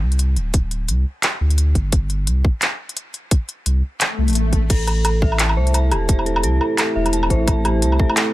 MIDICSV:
0, 0, Header, 1, 6, 480
1, 0, Start_track
1, 0, Tempo, 346821
1, 746, Time_signature, 4, 2, 24, 8
1, 11534, End_track
2, 0, Start_track
2, 0, Title_t, "Synth bell"
2, 0, Program_c, 0, 98
2, 6506, Note_on_c, 0, 69, 97
2, 6726, Note_off_c, 0, 69, 0
2, 6747, Note_on_c, 0, 69, 68
2, 6803, Control_c, 0, 64, 127
2, 6966, Note_off_c, 0, 69, 0
2, 6985, Note_on_c, 0, 69, 72
2, 7205, Note_off_c, 0, 69, 0
2, 7226, Note_on_c, 0, 76, 73
2, 7446, Note_off_c, 0, 76, 0
2, 7467, Note_on_c, 0, 81, 74
2, 7696, Note_off_c, 0, 81, 0
2, 7707, Note_on_c, 0, 72, 70
2, 7926, Note_off_c, 0, 72, 0
2, 7947, Note_on_c, 0, 81, 73
2, 8098, Note_off_c, 0, 81, 0
2, 8187, Note_on_c, 0, 67, 75
2, 8417, Note_off_c, 0, 67, 0
2, 8427, Note_on_c, 0, 81, 78
2, 8578, Note_off_c, 0, 81, 0
2, 8667, Note_on_c, 0, 69, 72
2, 8886, Note_off_c, 0, 69, 0
2, 8907, Note_on_c, 0, 69, 94
2, 9126, Note_off_c, 0, 69, 0
2, 9147, Note_on_c, 0, 69, 74
2, 9366, Note_off_c, 0, 69, 0
2, 9387, Note_on_c, 0, 69, 75
2, 9606, Note_off_c, 0, 69, 0
2, 9628, Note_on_c, 0, 76, 74
2, 9847, Note_off_c, 0, 76, 0
2, 9867, Note_on_c, 0, 81, 71
2, 10096, Note_off_c, 0, 81, 0
2, 10108, Note_on_c, 0, 72, 72
2, 10327, Note_off_c, 0, 72, 0
2, 10347, Note_on_c, 0, 81, 77
2, 10498, Note_off_c, 0, 81, 0
2, 10587, Note_on_c, 0, 67, 73
2, 10817, Note_off_c, 0, 67, 0
2, 10826, Note_on_c, 0, 81, 73
2, 10978, Note_off_c, 0, 81, 0
2, 11067, Note_on_c, 0, 69, 76
2, 11286, Note_off_c, 0, 69, 0
2, 11305, Note_on_c, 0, 69, 92
2, 11525, Note_off_c, 0, 69, 0
2, 11534, End_track
3, 0, Start_track
3, 0, Title_t, "Analog synth pad"
3, 0, Program_c, 1, 89
3, 6507, Note_on_c, 1, 57, 68
3, 6902, Note_on_c, 1, 60, 70
3, 6914, Note_on_c, 1, 64, 76
3, 7645, Note_on_c, 1, 72, 72
3, 11534, Note_off_c, 1, 57, 0
3, 11534, Note_off_c, 1, 60, 0
3, 11534, Note_off_c, 1, 64, 0
3, 11534, Note_off_c, 1, 72, 0
3, 11534, End_track
4, 0, Start_track
4, 0, Title_t, "Sub bass"
4, 0, Program_c, 2, 38
4, 24, Note_on_c, 2, 36, 91
4, 504, Note_on_c, 2, 26, 77
4, 525, Note_off_c, 2, 36, 0
4, 1225, Note_on_c, 2, 36, 88
4, 1246, Note_off_c, 2, 26, 0
4, 1449, Note_off_c, 2, 36, 0
4, 1945, Note_on_c, 2, 38, 86
4, 2412, Note_off_c, 2, 38, 0
4, 2425, Note_on_c, 2, 31, 78
4, 3144, Note_on_c, 2, 36, 88
4, 3165, Note_off_c, 2, 31, 0
4, 3369, Note_off_c, 2, 36, 0
4, 5064, Note_on_c, 2, 36, 88
4, 5289, Note_off_c, 2, 36, 0
4, 5786, Note_on_c, 2, 36, 73
4, 5922, Note_on_c, 2, 33, 76
4, 5943, Note_off_c, 2, 36, 0
4, 6493, Note_off_c, 2, 33, 0
4, 6504, Note_on_c, 2, 33, 98
4, 7706, Note_on_c, 2, 36, 92
4, 7727, Note_off_c, 2, 33, 0
4, 8186, Note_on_c, 2, 28, 79
4, 8207, Note_off_c, 2, 36, 0
4, 8907, Note_on_c, 2, 36, 86
4, 8927, Note_off_c, 2, 28, 0
4, 9130, Note_off_c, 2, 36, 0
4, 9627, Note_on_c, 2, 28, 90
4, 10094, Note_off_c, 2, 28, 0
4, 10105, Note_on_c, 2, 33, 80
4, 10828, Note_on_c, 2, 36, 88
4, 10848, Note_off_c, 2, 33, 0
4, 11051, Note_off_c, 2, 36, 0
4, 11534, End_track
5, 0, Start_track
5, 0, Title_t, "Swell"
5, 0, Program_c, 3, 103
5, 5546, Note_on_c, 3, 60, 57
5, 6506, Note_off_c, 3, 60, 0
5, 11534, End_track
6, 0, Start_track
6, 0, Title_t, "Drums"
6, 162, Note_on_c, 9, 42, 34
6, 265, Note_off_c, 9, 42, 0
6, 265, Note_on_c, 9, 42, 57
6, 403, Note_off_c, 9, 42, 0
6, 504, Note_on_c, 9, 42, 32
6, 643, Note_off_c, 9, 42, 0
6, 743, Note_on_c, 9, 42, 69
6, 744, Note_on_c, 9, 36, 115
6, 882, Note_off_c, 9, 42, 0
6, 883, Note_off_c, 9, 36, 0
6, 985, Note_on_c, 9, 42, 33
6, 1123, Note_off_c, 9, 42, 0
6, 1224, Note_on_c, 9, 42, 58
6, 1363, Note_off_c, 9, 42, 0
6, 1704, Note_on_c, 9, 39, 102
6, 1704, Note_on_c, 9, 42, 68
6, 1843, Note_off_c, 9, 39, 0
6, 1843, Note_off_c, 9, 42, 0
6, 2082, Note_on_c, 9, 42, 31
6, 2186, Note_off_c, 9, 42, 0
6, 2186, Note_on_c, 9, 42, 58
6, 2324, Note_off_c, 9, 42, 0
6, 2424, Note_on_c, 9, 36, 54
6, 2426, Note_on_c, 9, 42, 33
6, 2563, Note_off_c, 9, 36, 0
6, 2564, Note_off_c, 9, 42, 0
6, 2663, Note_on_c, 9, 42, 73
6, 2665, Note_on_c, 9, 36, 112
6, 2801, Note_off_c, 9, 42, 0
6, 2803, Note_off_c, 9, 36, 0
6, 2903, Note_on_c, 9, 42, 33
6, 3041, Note_off_c, 9, 42, 0
6, 3144, Note_on_c, 9, 42, 60
6, 3282, Note_off_c, 9, 42, 0
6, 3385, Note_on_c, 9, 36, 94
6, 3523, Note_off_c, 9, 36, 0
6, 3624, Note_on_c, 9, 39, 102
6, 3624, Note_on_c, 9, 42, 69
6, 3762, Note_off_c, 9, 39, 0
6, 3762, Note_off_c, 9, 42, 0
6, 4003, Note_on_c, 9, 42, 34
6, 4105, Note_off_c, 9, 42, 0
6, 4105, Note_on_c, 9, 42, 60
6, 4243, Note_off_c, 9, 42, 0
6, 4345, Note_on_c, 9, 42, 33
6, 4484, Note_off_c, 9, 42, 0
6, 4584, Note_on_c, 9, 42, 74
6, 4585, Note_on_c, 9, 36, 117
6, 4723, Note_off_c, 9, 42, 0
6, 4724, Note_off_c, 9, 36, 0
6, 4825, Note_on_c, 9, 42, 37
6, 4964, Note_off_c, 9, 42, 0
6, 5066, Note_on_c, 9, 42, 63
6, 5204, Note_off_c, 9, 42, 0
6, 5546, Note_on_c, 9, 39, 103
6, 5546, Note_on_c, 9, 42, 73
6, 5685, Note_off_c, 9, 39, 0
6, 5685, Note_off_c, 9, 42, 0
6, 5923, Note_on_c, 9, 42, 33
6, 5946, Note_off_c, 9, 42, 0
6, 5946, Note_on_c, 9, 42, 28
6, 5990, Note_off_c, 9, 42, 0
6, 5990, Note_on_c, 9, 42, 23
6, 6025, Note_off_c, 9, 42, 0
6, 6025, Note_on_c, 9, 42, 62
6, 6163, Note_off_c, 9, 42, 0
6, 6263, Note_on_c, 9, 42, 34
6, 6265, Note_on_c, 9, 36, 55
6, 6402, Note_off_c, 9, 42, 0
6, 6403, Note_off_c, 9, 36, 0
6, 6504, Note_on_c, 9, 42, 76
6, 6504, Note_on_c, 9, 49, 73
6, 6505, Note_on_c, 9, 36, 117
6, 6643, Note_off_c, 9, 36, 0
6, 6643, Note_off_c, 9, 42, 0
6, 6643, Note_off_c, 9, 49, 0
6, 6746, Note_on_c, 9, 42, 37
6, 6746, Note_on_c, 9, 77, 52
6, 6884, Note_off_c, 9, 42, 0
6, 6884, Note_off_c, 9, 77, 0
6, 6985, Note_on_c, 9, 42, 65
6, 6985, Note_on_c, 9, 77, 77
6, 7123, Note_off_c, 9, 42, 0
6, 7123, Note_off_c, 9, 77, 0
6, 7225, Note_on_c, 9, 36, 96
6, 7363, Note_off_c, 9, 36, 0
6, 7363, Note_on_c, 9, 77, 52
6, 7465, Note_on_c, 9, 39, 103
6, 7465, Note_on_c, 9, 42, 76
6, 7501, Note_off_c, 9, 77, 0
6, 7603, Note_off_c, 9, 39, 0
6, 7603, Note_off_c, 9, 42, 0
6, 7603, Note_on_c, 9, 77, 77
6, 7741, Note_off_c, 9, 77, 0
6, 7844, Note_on_c, 9, 42, 37
6, 7948, Note_off_c, 9, 42, 0
6, 7948, Note_on_c, 9, 42, 62
6, 7948, Note_on_c, 9, 77, 51
6, 8086, Note_off_c, 9, 42, 0
6, 8086, Note_off_c, 9, 77, 0
6, 8186, Note_on_c, 9, 42, 36
6, 8186, Note_on_c, 9, 77, 73
6, 8325, Note_off_c, 9, 42, 0
6, 8325, Note_off_c, 9, 77, 0
6, 8426, Note_on_c, 9, 36, 127
6, 8426, Note_on_c, 9, 42, 81
6, 8564, Note_off_c, 9, 36, 0
6, 8565, Note_off_c, 9, 42, 0
6, 8565, Note_on_c, 9, 77, 51
6, 8668, Note_on_c, 9, 42, 36
6, 8704, Note_off_c, 9, 77, 0
6, 8803, Note_on_c, 9, 77, 81
6, 8806, Note_off_c, 9, 42, 0
6, 8906, Note_on_c, 9, 42, 65
6, 8942, Note_off_c, 9, 77, 0
6, 9044, Note_off_c, 9, 42, 0
6, 9147, Note_on_c, 9, 77, 51
6, 9285, Note_off_c, 9, 77, 0
6, 9388, Note_on_c, 9, 39, 111
6, 9388, Note_on_c, 9, 42, 76
6, 9388, Note_on_c, 9, 77, 72
6, 9526, Note_off_c, 9, 39, 0
6, 9526, Note_off_c, 9, 42, 0
6, 9526, Note_off_c, 9, 77, 0
6, 9766, Note_on_c, 9, 42, 36
6, 9766, Note_on_c, 9, 77, 52
6, 9867, Note_off_c, 9, 42, 0
6, 9867, Note_on_c, 9, 42, 65
6, 9904, Note_off_c, 9, 77, 0
6, 10005, Note_off_c, 9, 42, 0
6, 10005, Note_on_c, 9, 77, 73
6, 10106, Note_on_c, 9, 36, 57
6, 10107, Note_on_c, 9, 42, 35
6, 10143, Note_off_c, 9, 77, 0
6, 10244, Note_off_c, 9, 36, 0
6, 10246, Note_off_c, 9, 42, 0
6, 10346, Note_on_c, 9, 36, 127
6, 10346, Note_on_c, 9, 42, 76
6, 10346, Note_on_c, 9, 77, 49
6, 10484, Note_off_c, 9, 36, 0
6, 10485, Note_off_c, 9, 42, 0
6, 10485, Note_off_c, 9, 77, 0
6, 10587, Note_on_c, 9, 42, 37
6, 10587, Note_on_c, 9, 77, 75
6, 10725, Note_off_c, 9, 42, 0
6, 10725, Note_off_c, 9, 77, 0
6, 10826, Note_on_c, 9, 42, 67
6, 10964, Note_off_c, 9, 42, 0
6, 10964, Note_on_c, 9, 77, 48
6, 11065, Note_on_c, 9, 36, 104
6, 11103, Note_off_c, 9, 77, 0
6, 11204, Note_off_c, 9, 36, 0
6, 11204, Note_on_c, 9, 77, 72
6, 11306, Note_on_c, 9, 39, 116
6, 11306, Note_on_c, 9, 42, 76
6, 11342, Note_off_c, 9, 77, 0
6, 11444, Note_off_c, 9, 39, 0
6, 11444, Note_off_c, 9, 42, 0
6, 11534, End_track
0, 0, End_of_file